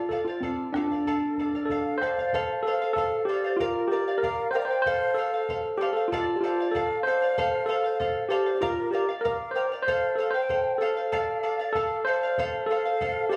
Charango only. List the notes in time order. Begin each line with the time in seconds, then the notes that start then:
Already playing: D5 F5
0.11 A4 D5 F5
0.28 D5 F5
0.43 A4 D5 F5
0.75 A4 D5 F5
0.91 D5 F5
1.07 A4 D5 F5
1.39 A4 D5 F5
1.55 D5 F5
1.70 A4 D5 F5
2.02 A4 D5 F5
2.19 D5 F5
2.34 A4 C5 F5
2.67 A4 C5 F5
2.82 C5 F5
2.97 A4 C5 F5
3.29 A4 C5 F5
3.44 C5 F5
3.60 A#4 D5 F5
3.92 A#4 D5 F5
4.08 D5 F5
4.23 A#4 D5 F5
4.55 A#4 D5 F5
4.71 D5 F5
4.87 A4 C5 F5
5.18 A4 C5 F5
5.34 C5 F5
5.49 A4 C5 F5
5.81 A4 C5 F5
5.97 C5 F5
6.12 A4 D5 F5
6.43 A4 D5 F5
6.60 D5 F5
6.75 A4 D5 F5
7.07 A4 D5 F5
7.22 D5 F5
7.38 A4 C5 F5
7.69 A4 C5 F5
7.84 C5 F5
8.00 A4 C5 F5
8.30 A4 C5 F5
8.46 C5 F5
8.61 A#4 D5 F5
8.93 A#4 D5 F5
9.09 D5 F5
9.25 A#4 D5 F5
9.55 A#4 D5 F5
9.72 D5 F5
9.88 A4 C5 F5
10.18 A4 C5 F5
10.34 C5 F5
10.49 A4 C5 F5
10.81 A4 C5 F5
10.97 C5 F5
11.12 A4 D5 F5
11.43 A4 D5 F5
11.59 D5 F5
11.75 A4 D5 F5
12.07 A4 D5 F5
12.23 D5 F5
12.38 A4 C5 F5
12.70 A4 C5 F5
12.85 C5 F5
13.01 A4 C5 F5
13.32 A4 C5 F5